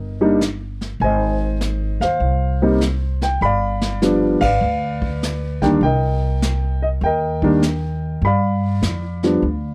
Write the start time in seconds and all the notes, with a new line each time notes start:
Already playing: G1 A#4 D#5
0.21 G3 A#3 D4 D#4
0.41 snare, hi-hat pedal
0.81 snare
1.00 G#1 G#5, brush sweep
1.04 C5 D#5
1.61 snare, hi-hat pedal
2.00 D#2 C5 F5, snare
2.20 C2, brush sweep
2.62 G3 A#3 C4 D#4
2.81 snare, hi-hat pedal
3.21 G5, snare
3.41 G1 D5 F5 B5, brush sweep
3.81 snare
4.02 F3 G3 B3 D4, snare, hi-hat pedal
4.41 G#1 B4 D5 F5, kick, ride
4.61 D2, brush sweep
5.02 kick
5.23 snare, hi-hat pedal
5.62 D#3 G3 A#3 D4 G5, kick, snare
5.81 C2 A#4 D#5 G5, brush sweep
6.42 snare, hi-hat pedal
6.82 D#5
7.01 D#2 G5, brush sweep
7.06 A#4 D#5
7.42 D#3 G3 A#3 D4, kick
7.62 snare, hi-hat pedal
8.22 G2 B5, brush sweep
8.26 D5 F5
8.82 F2, snare, hi-hat pedal
9.23 F3 G3 B3 D4, snare
9.42 D2, brush sweep